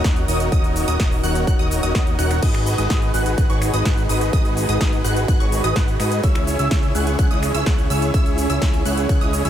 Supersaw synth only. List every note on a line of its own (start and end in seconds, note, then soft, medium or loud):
0.05 0.25 D#4 medium
0.05 0.25 F#4 medium
0.05 0.25 A#4 medium
0.05 0.25 C#5 medium
0.05 0.25 F#5 medium
0.28 0.49 D#4 medium
0.28 0.49 F#4 medium
0.28 0.49 A#4 medium
0.28 0.49 C#5 medium
0.28 0.49 D#5 medium
0.52 0.85 D#4 loud
0.52 0.85 F#4 medium
0.52 0.85 A#4 medium
0.52 0.85 C#5 medium
0.52 0.85 D#5 loud
0.88 0.97 D#4 medium
0.88 0.97 F#4 medium
0.88 0.97 A#4 medium
0.88 0.97 C#5 medium
0.88 0.97 D#5 medium
1.00 1.21 D#4 medium
1.00 1.21 F#4 medium
1.00 1.21 A#4 medium
1.00 1.21 C#5 medium
1.00 1.21 D#5 loud
1.24 1.45 D#4 medium
1.24 1.45 F#4 medium
1.24 1.45 A#4 medium
1.24 1.45 C#5 medium
1.24 1.45 F#5 medium
1.47 1.56 D#4 medium
1.47 1.56 F#4 medium
1.47 1.56 A#4 medium
1.47 1.56 C#5 medium
1.47 1.56 F#5 loud
1.59 1.80 D#4 medium
1.59 1.80 F#4 medium
1.59 1.80 A#4 medium
1.59 1.80 C#5 medium
1.59 1.80 D#5 medium
1.83 1.92 D#4 medium
1.83 1.92 F#4 medium
1.83 1.92 A#4 medium
1.83 1.92 C#5 medium
1.83 1.92 D#5 medium
1.95 2.16 D#4 medium
1.95 2.16 F#4 medium
1.95 2.16 A#4 medium
1.95 2.16 C#5 medium
1.95 2.16 D#5 medium
2.19 2.40 D#4 loud
2.19 2.40 F#4 medium
2.19 2.40 A#4 medium
2.19 2.40 C#5 medium
2.19 2.40 F#5 loud
2.42 2.75 D#4 medium
2.42 2.75 F#4 medium
2.42 2.75 G#4 medium
2.42 2.75 B4 medium
2.42 2.75 D#5 loud
2.78 2.87 D#4 medium
2.78 2.87 F#4 medium
2.78 2.87 G#4 medium
2.78 2.87 B4 medium
2.78 2.87 D#5 medium
2.90 3.11 D#4 medium
2.90 3.11 F#4 medium
2.90 3.11 G#4 medium
2.90 3.11 B4 medium
2.90 3.11 D#5 medium
3.14 3.35 D#4 medium
3.14 3.35 F#4 medium
3.14 3.35 G#4 medium
3.14 3.35 B4 medium
3.14 3.35 F#5 loud
3.38 3.47 D#4 loud
3.38 3.47 F#4 medium
3.38 3.47 G#4 medium
3.38 3.47 B4 medium
3.38 3.47 F#5 loud
3.50 3.71 D#4 medium
3.50 3.71 F#4 medium
3.50 3.71 G#4 medium
3.50 3.71 B4 medium
3.50 3.71 C#5 medium
3.74 3.84 D#4 medium
3.74 3.84 F#4 medium
3.74 3.84 G#4 medium
3.74 3.84 B4 medium
3.74 3.84 D#5 loud
3.85 4.06 D#4 medium
3.85 4.06 F#4 medium
3.85 4.06 G#4 medium
3.85 4.06 B4 medium
3.85 4.06 F#5 medium
4.09 4.30 D#4 medium
4.09 4.30 F#4 medium
4.09 4.30 G#4 medium
4.09 4.30 B4 medium
4.09 4.30 D#5 medium
4.33 4.66 D#4 medium
4.33 4.66 F#4 medium
4.33 4.66 G#4 medium
4.33 4.66 B4 medium
4.33 4.66 D#5 loud
4.69 4.78 D#4 medium
4.69 4.78 F#4 medium
4.69 4.78 G#4 medium
4.69 4.78 B4 medium
4.69 4.78 D#5 medium
4.81 5.02 D#4 medium
4.81 5.02 F#4 medium
4.81 5.02 G#4 medium
4.81 5.02 B4 medium
4.81 5.02 D#5 medium
5.05 5.25 D#4 medium
5.05 5.25 F#4 medium
5.05 5.25 G#4 medium
5.05 5.25 B4 medium
5.05 5.25 F#5 loud
5.28 5.37 D#4 loud
5.28 5.37 F#4 medium
5.28 5.37 G#4 medium
5.28 5.37 B4 medium
5.28 5.37 F#5 loud
5.40 5.61 D#4 medium
5.40 5.61 F#4 medium
5.40 5.61 G#4 medium
5.40 5.61 B4 medium
5.40 5.61 C#5 medium
5.64 5.74 D#4 medium
5.64 5.74 F#4 medium
5.64 5.74 G#4 medium
5.64 5.74 B4 medium
5.64 5.74 D#5 loud
5.76 5.97 D#4 medium
5.76 5.97 F#4 medium
5.76 5.97 G#4 medium
5.76 5.97 B4 medium
5.76 5.97 F#5 medium
6.00 6.21 D#4 medium
6.00 6.21 F#4 medium
6.00 6.21 G#4 medium
6.00 6.21 B4 medium
6.00 6.21 D#5 medium
6.24 6.56 C#4 loud
6.24 6.56 E4 medium
6.24 6.56 G#4 medium
6.24 6.56 C#5 medium
6.24 6.56 E5 loud
6.59 6.68 C#4 medium
6.59 6.68 E4 medium
6.59 6.68 G#4 medium
6.59 6.68 C#5 medium
6.59 6.68 E5 medium
6.71 6.92 C#4 medium
6.71 6.92 E4 medium
6.71 6.92 G#4 medium
6.71 6.92 C#5 medium
6.71 6.92 E5 loud
6.95 7.16 C#4 medium
6.95 7.16 E4 medium
6.95 7.16 G#4 medium
6.95 7.16 C#5 medium
6.95 7.16 F#5 medium
7.19 7.28 C#4 medium
7.19 7.28 E4 medium
7.19 7.28 G#4 medium
7.19 7.28 C#5 medium
7.19 7.28 F#5 loud
7.31 7.52 C#4 medium
7.31 7.52 E4 medium
7.31 7.52 G#4 medium
7.31 7.52 C#5 medium
7.31 7.52 D#5 medium
7.55 7.65 C#4 loud
7.55 7.65 E4 medium
7.55 7.65 G#4 medium
7.55 7.65 C#5 medium
7.55 7.65 E5 loud
7.66 7.87 C#4 medium
7.66 7.87 E4 medium
7.66 7.87 G#4 medium
7.66 7.87 C#5 medium
7.66 7.87 F#5 medium
7.90 8.11 C#4 medium
7.90 8.11 E4 medium
7.90 8.11 G#4 medium
7.90 8.11 C#5 medium
7.90 8.11 E5 medium
8.14 8.47 C#4 loud
8.14 8.47 E4 medium
8.14 8.47 G#4 medium
8.14 8.47 C#5 medium
8.14 8.47 E5 loud
8.50 8.59 C#4 medium
8.50 8.59 E4 medium
8.50 8.59 G#4 medium
8.50 8.59 C#5 medium
8.50 8.59 E5 medium
8.62 8.83 C#4 medium
8.62 8.83 E4 medium
8.62 8.83 G#4 medium
8.62 8.83 C#5 medium
8.62 8.83 E5 medium
8.86 9.06 C#4 medium
8.86 9.06 E4 medium
8.86 9.06 G#4 medium
8.86 9.06 C#5 medium
8.86 9.06 F#5 medium
9.09 9.18 C#4 loud
9.09 9.18 E4 medium
9.09 9.18 G#4 medium
9.09 9.18 C#5 medium
9.09 9.18 F#5 loud
9.21 9.42 C#4 medium
9.21 9.42 E4 medium
9.21 9.42 G#4 medium
9.21 9.42 C#5 medium
9.21 9.42 D#5 medium
9.45 9.50 C#4 medium
9.45 9.50 E4 medium
9.45 9.50 G#4 medium
9.45 9.50 C#5 medium
9.45 9.50 E5 medium